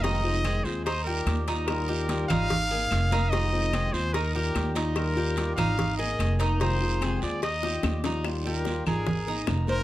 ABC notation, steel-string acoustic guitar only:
X:1
M:4/4
L:1/8
Q:1/4=146
K:Eb
V:1 name="Steel-string acoustic guitar"
[C,E,A,CF] [E,A,CF] [C,E,A,CF] [A,CF] z [G,EF]2 [G,EF] | [E,G,EF] [G,EF] [E,G,EF] [G,F] z [B,EB]2 [B,EB] | [C,E,A,CF] [E,A,CF] [C,E,A,CF] [A,CF] z [G,EF]2 [G,EF] | [E,G,EF] [G,EF] [E,G,EF] [G,EF] z [B,EB]2 [B,EB] |
[C,E,A,CF] [E,A,CF] [C,E,A,CF] [A,CF] z [G,EF]2 [G,EF] | [E,G,EF] [G,EF] [E,G,EF] [G,EF] z [B,EB]2 [B,EB] |]